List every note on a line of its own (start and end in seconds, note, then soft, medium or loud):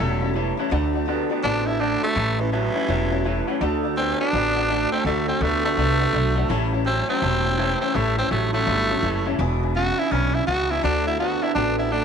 0.00 0.50 E1 medium
0.00 0.21 A2 medium
0.00 0.33 A2 medium
0.00 0.21 E3 loud
0.00 0.33 F#3 medium
0.00 0.21 G3 loud
0.00 0.21 C#4 medium
0.00 0.20 E4 loud
0.00 0.32 A4 loud
0.00 0.13 C#5 loud
0.00 0.13 E5 loud
0.00 0.13 A5 loud
0.21 0.33 G3 medium
0.21 0.34 C#4 medium
0.21 0.34 E4 medium
0.21 0.30 C#5 medium
0.21 0.30 E5 medium
0.21 0.30 A5 medium
0.33 0.56 A2 medium
0.33 0.57 E3 medium
0.33 0.56 E3 medium
0.33 0.58 G3 medium
0.33 0.58 C#4 medium
0.33 0.56 E4 medium
0.33 0.49 C#5 medium
0.33 0.49 E5 medium
0.33 0.50 A5 loud
0.57 0.71 A2 medium
0.57 0.71 E3 medium
0.57 0.71 G3 medium
0.57 0.71 C#4 medium
0.57 0.71 E4 medium
0.57 0.67 C#5 medium
0.57 0.67 E5 medium
0.57 0.67 A5 medium
0.70 1.22 D2 medium
0.70 0.94 D3 medium
0.70 1.05 D3 medium
0.70 0.94 A3 medium
0.70 1.05 A3 medium
0.70 0.93 C4 loud
0.70 0.92 F#4 loud
0.70 0.86 D5 loud
0.70 0.86 F#5 loud
0.70 0.86 A5 loud
0.93 1.05 A3 soft
0.93 1.05 C4 medium
0.93 1.06 F#4 medium
0.93 1.03 D5 medium
0.93 1.03 F#5 medium
0.93 1.03 A5 medium
1.06 1.29 D3 medium
1.06 1.30 A3 medium
1.06 1.29 B3 medium
1.06 1.29 C4 medium
1.06 1.28 F#4 medium
1.06 1.22 D5 medium
1.06 1.22 F#5 medium
1.06 1.22 A5 loud
1.29 1.43 D3 medium
1.29 1.42 A3 soft
1.29 1.43 B3 medium
1.29 1.43 C4 medium
1.29 1.43 F#4 medium
1.29 1.39 D5 medium
1.29 1.39 F#5 medium
1.29 1.39 A5 medium
1.43 1.94 A1 medium
1.43 1.66 D3 medium
1.43 1.78 D3 medium
1.43 1.66 A3 medium
1.43 1.78 B3 loud
1.43 1.67 C4 medium
1.43 1.68 D4 loud
1.43 1.65 F#4 medium
1.43 1.58 D5 medium
1.43 1.58 F#5 medium
1.43 1.58 A5 loud
1.66 1.79 A3 soft
1.66 1.79 C4 medium
1.66 1.82 E4 medium
1.66 1.80 F#4 medium
1.66 1.75 D5 medium
1.66 1.75 F#5 medium
1.66 1.75 A5 medium
1.79 2.02 D3 medium
1.79 2.01 D3 medium
1.79 2.03 A3 medium
1.79 2.01 A3 loud
1.79 2.02 C4 medium
1.79 2.02 D4 medium
1.79 2.01 F#4 medium
1.79 1.94 D5 medium
1.79 1.94 F#5 medium
1.79 1.94 A5 medium
2.02 2.15 D3 medium
2.02 2.41 A3 loud
2.02 2.15 A3 medium
2.02 2.16 C4 soft
2.02 2.16 F#4 medium
2.02 2.11 D5 medium
2.02 2.11 F#5 medium
2.02 2.12 A5 medium
2.15 2.67 A1 medium
2.15 2.38 A2 medium
2.15 2.50 A2 medium
2.15 2.39 E3 medium
2.15 2.50 E3 loud
2.15 2.39 G3 medium
2.15 2.38 C#4 medium
2.15 2.37 E4 medium
2.15 2.30 C#5 medium
2.15 2.30 E5 medium
2.15 2.30 A5 loud
2.38 2.52 E3 medium
2.38 2.52 G3 soft
2.38 2.52 C#4 soft
2.38 2.52 E4 medium
2.38 2.47 C#5 medium
2.38 2.47 E5 medium
2.38 2.47 A5 medium
2.52 2.73 A2 medium
2.52 3.58 E3 loud
2.52 2.73 F#3 medium
2.52 2.75 G3 medium
2.52 2.74 C#4 medium
2.52 2.73 E4 medium
2.52 2.66 C#5 medium
2.52 2.66 E5 medium
2.52 2.66 A5 medium
2.74 2.88 A2 medium
2.74 2.88 F#3 medium
2.74 2.87 G3 soft
2.74 2.87 C#4 soft
2.74 2.88 E4 medium
2.74 2.83 C#5 medium
2.74 2.83 E5 medium
2.74 2.83 F#5 medium
2.87 3.39 E1 medium
2.87 3.11 A2 medium
2.87 3.22 A2 medium
2.87 3.11 E3 medium
2.87 3.23 F#3 loud
2.87 3.11 G3 medium
2.87 3.11 C#4 medium
2.87 3.10 E4 medium
2.87 3.02 C#5 medium
2.87 3.02 E5 medium
2.87 3.03 A5 loud
3.11 3.24 G3 soft
3.11 3.25 C#4 soft
3.11 3.25 E4 medium
3.11 3.19 C#5 medium
3.11 3.19 E5 medium
3.11 3.20 A5 medium
3.24 3.46 A2 medium
3.24 3.47 E3 medium
3.24 3.46 E3 medium
3.24 3.48 G3 medium
3.24 3.48 C#4 medium
3.24 3.47 E4 medium
3.24 3.38 C#5 medium
3.24 3.39 E5 medium
3.24 3.39 A5 medium
3.47 3.60 A2 medium
3.47 3.60 E3 medium
3.47 3.61 G3 medium
3.47 3.61 C#4 medium
3.47 3.61 E4 medium
3.47 3.55 C#5 medium
3.47 3.55 E5 medium
3.47 3.56 F#5 medium
3.61 4.11 D2 medium
3.61 3.84 D3 medium
3.61 3.95 D3 medium
3.61 3.84 A3 loud
3.61 3.95 A3 medium
3.61 3.83 C4 medium
3.61 3.82 F#4 medium
3.61 3.75 D5 loud
3.61 3.75 F#5 loud
3.61 3.75 A5 loud
3.83 3.96 A3 soft
3.83 3.96 C4 medium
3.83 3.97 F#4 medium
3.83 3.92 D5 medium
3.83 3.92 F#5 medium
3.83 3.92 A5 medium
3.96 4.19 D3 medium
3.96 4.18 D3 medium
3.96 4.20 A3 medium
3.96 4.18 B3 medium
3.96 4.19 C4 loud
3.96 4.19 C4 medium
3.96 4.18 F#4 medium
3.96 4.11 D5 medium
3.96 4.11 F#5 medium
3.96 4.11 A5 medium
4.19 4.32 D3 medium
4.19 4.32 A3 soft
4.19 4.32 B3 medium
4.19 4.32 C4 soft
4.19 4.90 D4 loud
4.19 4.32 F#4 medium
4.19 4.28 D5 medium
4.19 4.28 F#5 medium
4.19 4.29 A5 medium
4.32 4.84 A1 medium
4.32 4.56 D3 medium
4.32 4.67 D3 medium
4.32 4.56 A3 medium
4.32 4.67 B3 medium
4.32 4.55 C4 medium
4.32 4.54 F#4 medium
4.32 4.47 D5 medium
4.32 4.48 F#5 medium
4.32 4.48 A5 loud
4.55 4.69 A3 soft
4.55 4.69 C4 soft
4.55 4.69 F#4 medium
4.55 4.64 D5 medium
4.55 4.65 F#5 medium
4.55 4.65 A5 medium
4.68 4.92 D3 medium
4.68 4.90 D3 medium
4.68 4.92 A3 medium
4.68 4.90 A3 medium
4.68 4.92 C4 medium
4.68 4.91 F#4 medium
4.68 4.83 D5 medium
4.68 4.84 F#5 medium
4.68 4.84 A5 loud
4.92 5.04 D3 medium
4.92 5.05 A3 medium
4.92 5.05 A3 soft
4.92 5.05 C4 medium
4.92 5.06 C4 medium
4.92 5.06 F#4 medium
4.92 5.01 D5 medium
4.92 5.01 F#5 medium
4.92 5.01 A5 medium
5.05 5.30 D2 medium
5.05 5.39 D3 medium
5.05 5.28 D3 medium
5.05 5.28 A3 medium
5.05 5.39 A3 medium
5.05 5.28 A3 medium
5.05 5.27 C4 medium
5.05 5.26 F#4 medium
5.05 5.20 D5 medium
5.05 5.20 F#5 medium
5.05 5.20 A5 medium
5.27 5.40 A3 soft
5.27 5.44 C4 medium
5.27 5.41 C4 soft
5.27 5.41 F#4 medium
5.27 5.37 D5 medium
5.27 5.37 F#5 medium
5.27 5.37 A5 medium
5.41 5.72 D2 medium
5.41 5.64 D3 medium
5.41 5.62 D3 medium
5.41 5.64 A3 medium
5.41 5.62 B3 medium
5.41 5.64 C4 medium
5.41 5.63 F#4 medium
5.41 5.56 D5 medium
5.41 5.56 F#5 medium
5.41 5.56 A5 medium
5.64 5.76 D3 medium
5.64 6.70 A3 loud
5.64 5.77 A3 soft
5.64 5.76 B3 medium
5.64 5.77 C4 soft
5.64 5.77 F#4 medium
5.64 5.73 D5 medium
5.64 5.73 F#5 medium
5.64 5.73 A5 medium
5.77 6.08 C2 medium
5.77 6.00 D3 medium
5.77 6.11 D3 medium
5.77 6.01 A3 medium
5.77 6.11 B3 medium
5.77 6.00 C4 medium
5.77 5.99 F#4 medium
5.77 5.92 D5 medium
5.77 5.92 F#5 medium
5.77 5.92 A5 loud
5.99 6.13 A3 soft
5.99 6.14 C4 soft
5.99 6.14 F#4 medium
5.99 6.08 D5 medium
5.99 6.08 F#5 medium
5.99 6.08 A5 medium
6.13 6.44 B1 medium
6.13 6.34 D3 medium
6.13 6.37 D3 medium
6.13 6.34 A3 medium
6.13 6.37 A3 medium
6.13 6.36 C4 medium
6.13 6.35 F#4 medium
6.13 6.28 D5 medium
6.13 6.28 F#5 medium
6.13 6.28 A5 loud
6.36 6.48 D3 medium
6.36 6.48 A3 medium
6.36 6.50 A3 medium
6.36 6.50 C4 medium
6.36 6.50 F#4 medium
6.36 6.45 D5 medium
6.36 6.45 F#5 medium
6.36 6.45 A5 loud
6.49 7.00 A1 medium
6.49 6.72 A2 medium
6.49 6.83 A2 medium
6.49 6.83 E3 loud
6.49 6.72 E3 loud
6.49 6.73 G3 loud
6.49 6.73 C#4 loud
6.49 6.72 E4 loud
6.49 6.64 C#5 loud
6.49 6.64 E5 loud
6.49 6.64 A5 loud
6.73 6.86 G3 medium
6.73 6.86 C#4 medium
6.73 6.86 E4 medium
6.73 6.81 C#5 medium
6.73 6.81 E5 medium
6.73 6.81 A5 medium
6.85 7.06 A2 medium
6.85 7.09 E3 medium
6.85 7.06 F#3 medium
6.85 7.09 G3 medium
6.85 7.08 C4 loud
6.85 7.09 C#4 medium
6.85 7.08 E4 medium
6.85 7.00 C#5 medium
6.85 7.00 E5 medium
6.85 7.00 A5 medium
7.08 7.20 A2 medium
7.08 7.20 F#3 medium
7.08 7.21 G3 soft
7.08 7.79 C4 loud
7.08 7.22 C#4 soft
7.08 7.22 E4 medium
7.08 7.17 C#5 medium
7.08 7.17 E5 medium
7.08 7.17 A5 medium
7.21 7.73 E1 medium
7.21 7.55 A2 medium
7.21 7.45 A2 medium
7.21 7.45 E3 medium
7.21 7.55 F#3 loud
7.21 7.45 G3 medium
7.21 7.45 C#4 medium
7.21 7.44 E4 medium
7.21 7.36 C#5 medium
7.21 7.36 E5 medium
7.21 7.36 A5 loud
7.45 7.58 G3 soft
7.45 7.59 C#4 soft
7.45 7.58 E4 medium
7.45 7.53 C#5 medium
7.45 7.53 E5 medium
7.45 7.53 A5 medium
7.58 7.78 A2 medium
7.58 7.79 E3 medium
7.58 7.81 E3 medium
7.58 7.81 G3 medium
7.58 7.81 C#4 medium
7.58 7.80 E4 medium
7.58 7.72 C#5 medium
7.58 7.72 E5 medium
7.58 7.73 A5 loud
7.80 7.93 A2 medium
7.80 7.93 E3 medium
7.80 7.94 G3 soft
7.80 7.97 C4 loud
7.80 7.94 C#4 medium
7.80 7.94 E4 medium
7.80 7.89 C#5 medium
7.80 7.90 E5 medium
7.80 7.90 A5 medium
7.94 8.20 A1 medium
7.94 8.28 A2 medium
7.94 8.17 A2 medium
7.94 8.28 E3 medium
7.94 8.17 E3 medium
7.94 8.18 G3 medium
7.94 8.17 A3 loud
7.94 8.17 C#4 medium
7.94 8.16 E4 medium
7.94 8.08 C#5 medium
7.94 8.08 E5 medium
7.94 8.08 A5 loud
8.17 8.30 G3 soft
8.17 8.31 C4 loud
8.17 8.30 C#4 soft
8.17 8.30 E4 medium
8.17 8.25 C#5 medium
8.17 8.26 E5 medium
8.17 8.26 A5 medium
8.30 8.61 A1 medium
8.30 8.51 A2 medium
8.30 8.53 E3 medium
8.30 8.51 F#3 medium
8.30 8.53 G3 medium
8.30 8.53 A3 medium
8.30 8.53 C#4 medium
8.30 8.52 E4 medium
8.30 8.44 C#5 medium
8.30 8.44 E5 medium
8.30 8.45 A5 medium
8.53 8.65 A2 medium
8.53 8.65 F#3 medium
8.53 8.65 G3 soft
8.53 9.36 A3 loud
8.53 8.66 C#4 soft
8.53 8.66 E4 medium
8.53 8.62 C#5 medium
8.53 8.62 E5 medium
8.53 8.62 A5 medium
8.66 8.97 G1 medium
8.66 8.89 A2 medium
8.66 9.00 A2 medium
8.66 8.89 E3 medium
8.66 9.00 F#3 medium
8.66 8.89 G3 medium
8.66 8.89 C#4 medium
8.66 8.88 E4 medium
8.66 8.80 C#5 medium
8.66 8.81 E5 medium
8.66 8.81 B5 loud
8.89 9.02 G3 soft
8.89 9.03 C#4 soft
8.89 9.03 E4 soft
8.89 8.98 C#5 medium
8.89 8.98 E5 medium
8.89 8.98 A5 medium
9.02 9.33 F#1 medium
9.02 9.23 A2 medium
9.02 9.25 E3 medium
9.02 9.23 E3 medium
9.02 9.26 G3 medium
9.02 9.25 C#4 medium
9.02 9.24 E4 medium
9.02 9.17 C#5 medium
9.02 9.17 E5 medium
9.02 9.17 A5 medium
9.25 9.37 A2 medium
9.25 9.38 E3 medium
9.25 9.39 G3 medium
9.25 9.39 C#4 medium
9.25 9.38 E4 medium
9.25 9.34 C#5 medium
9.25 9.34 E5 medium
9.25 9.34 A5 medium
9.38 9.89 E1 medium
9.38 9.61 E2 medium
9.38 9.72 E2 medium
9.38 9.62 B2 loud
9.38 9.72 B2 medium
9.38 9.62 E3 medium
9.38 9.62 G#3 loud
9.38 9.61 D4 medium
9.38 9.60 E4 loud
9.38 9.53 B4 loud
9.38 9.53 E5 loud
9.38 9.53 G#5 loud
9.61 9.73 E3 medium
9.61 9.74 G#3 medium
9.61 9.75 D4 medium
9.61 9.74 E4 medium
9.61 9.70 B4 medium
9.61 9.71 E5 medium
9.61 9.71 G#5 loud
9.74 9.96 E2 medium
9.74 9.96 C#3 medium
9.74 9.97 E3 medium
9.74 9.97 G#3 medium
9.74 9.96 D4 medium
9.74 9.96 E4 medium
9.74 10.00 F#4 loud
9.74 9.89 B4 medium
9.74 9.89 E5 medium
9.74 9.90 G#5 medium
9.97 10.10 E2 medium
9.97 10.10 C#3 medium
9.97 10.10 E3 soft
9.97 10.10 G#3 soft
9.97 10.10 D4 soft
9.97 10.10 E4 medium
9.97 10.13 E4 medium
9.97 10.06 B4 medium
9.97 10.06 E5 medium
9.97 10.07 G#5 medium
10.10 10.42 B1 medium
10.10 10.34 E2 medium
10.10 10.45 E2 medium
10.10 10.33 B2 medium
10.10 10.45 C#3 medium
10.10 10.34 E3 medium
10.10 10.33 G#3 medium
10.10 10.36 C#4 medium
10.10 10.33 D4 medium
10.10 10.32 E4 medium
10.10 10.25 B4 medium
10.10 10.26 E5 medium
10.10 10.26 G#5 loud
10.34 10.45 E3 soft
10.34 10.46 G#3 soft
10.34 10.46 D4 soft
10.34 10.46 E4 medium
10.34 10.47 E4 medium
10.34 10.42 B4 medium
10.34 10.43 E5 medium
10.34 10.43 G#5 medium
10.46 10.78 C#2 medium
10.46 10.68 E2 medium
10.46 10.68 B2 medium
10.46 10.69 E3 medium
10.46 10.69 G#3 medium
10.46 10.68 D4 medium
10.46 10.67 E4 medium
10.46 10.72 F#4 loud
10.46 10.61 B4 medium
10.46 10.61 E5 medium
10.46 10.62 F#5 medium
10.68 10.82 E2 medium
10.68 10.82 B2 medium
10.68 10.81 E3 soft
10.68 10.82 G#3 medium
10.68 10.82 D4 medium
10.68 10.82 E4 medium
10.68 10.83 E4 loud
10.68 10.78 B4 medium
10.68 10.79 E5 medium
10.68 10.79 G#5 medium
10.81 11.34 D2 medium
10.81 11.05 D3 medium
10.81 11.17 D3 medium
10.81 11.05 A3 medium
10.81 11.17 A3 medium
10.81 11.05 C4 medium
10.81 11.06 D4 loud
10.81 11.04 F#4 medium
10.81 10.97 D5 medium
10.81 10.97 F#5 medium
10.81 10.97 A5 loud
11.05 11.18 A3 soft
11.05 11.18 C4 soft
11.05 11.19 E4 loud
11.05 11.19 F#4 medium
11.05 11.14 D5 medium
11.05 11.15 F#5 medium
11.05 11.15 A5 medium
11.18 11.41 D3 medium
11.18 11.40 D3 medium
11.18 11.42 A3 medium
11.18 11.40 B3 medium
11.18 11.42 C4 medium
11.18 11.44 F#4 loud
11.18 11.41 F#4 medium
11.18 11.33 D5 medium
11.18 11.33 F#5 medium
11.18 11.34 A5 medium
11.42 11.54 D3 medium
11.42 11.55 A3 soft
11.42 11.54 B3 medium
11.42 11.55 C4 soft
11.42 11.54 E4 loud
11.42 11.56 F#4 medium
11.42 11.50 D5 medium
11.42 11.50 F#5 medium
11.42 11.50 A5 medium
11.55 12.05 A1 medium
11.55 11.89 D3 medium
11.55 11.78 D3 medium
11.55 11.79 A3 medium
11.55 11.89 B3 loud
11.55 11.79 C4 medium
11.55 11.77 D4 loud
11.55 11.77 F#4 loud
11.55 11.69 D5 medium
11.55 11.69 F#5 medium
11.55 11.69 A5 loud
11.78 11.92 A3 soft
11.78 11.92 C4 soft
11.78 11.93 E4 medium
11.78 11.92 F#4 medium
11.78 11.86 D5 medium
11.78 11.87 F#5 medium
11.78 11.87 A5 medium
11.91 12.05 D3 medium
11.91 12.05 A3 medium
11.91 12.05 C4 medium
11.91 12.05 D4 loud
11.91 12.05 F#4 medium
11.91 12.05 D5 medium
11.91 12.05 F#5 medium
11.91 12.05 A5 medium